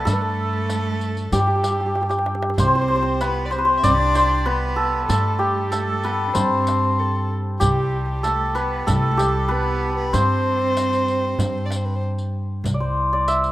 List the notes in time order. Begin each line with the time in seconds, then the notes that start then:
Already playing: B4 D5 E5
0.05 G2 A3 A4, riq, tombak dum
0.12 B4
0.21 A4
0.69 riq, tombak tek
0.86 tombak ka
1.01 riq, tombak ka
1.16 riq, tombak ka
1.32 G2 G3 G4, riq, tombak dum
1.40 G4
1.47 G4
1.56 G4
1.63 G4, riq, tombak tek
1.71 G4
1.80 G4
1.86 G4
1.95 G4, tombak tek
2.01 G4, tombak ka
2.09 G4, riq, tombak tek
2.19 tombak ka
2.26 tombak tek
2.35 tombak ka
2.43 tombak tek
2.50 tombak ka
2.56 C2 C4 C5, riq, tombak dum
2.68 C5
2.75 C5
2.82 C5
2.88 C5
2.96 C5
3.03 C5
3.20 B3 B4, riq, tombak tek
3.45 D5
3.51 C4 C5, riq, tombak ka
3.58 B4
3.65 C4 C5
3.77 E5
3.83 C2 D4 D5, riq, tombak dum
4.15 C5, riq, tombak tek
4.46 B3 B4
4.63 tombak ka
4.76 A4
5.07 G2 A3 A4, riq, tombak dum
5.39 G4
5.71 A3 A4, riq, tombak tek
6.03 B3 B4, riq, tombak ka
6.28 D4
6.33 G2 C4 C5, riq, tombak dum
6.67 riq, tombak tek
6.99 A4
7.16 tombak ka
7.60 C2 G3 G4, riq, tombak dum
8.08 G4
8.23 A3 A4, riq, tombak tek
8.55 B3 B4, riq, tombak ka
8.86 C2 A3 A4, riq, tombak dum
9.11 A4
9.17 G3 G4, riq, tombak tek
9.48 B3 B4
9.67 tombak ka
9.97 B4
10.13 G2 C4 C5, riq, tombak dum
10.77 riq, tombak tek
10.93 riq
11.08 riq
11.39 G2, riq, tombak dum
11.66 D5
11.71 riq, tombak tek
11.76 C5
11.85 B4
11.95 C5
12.18 riq, tombak ka
12.64 C2, riq, tombak dum
12.74 D5
12.80 C5
13.13 D5
13.28 E5, riq, tombak tek
13.44 riq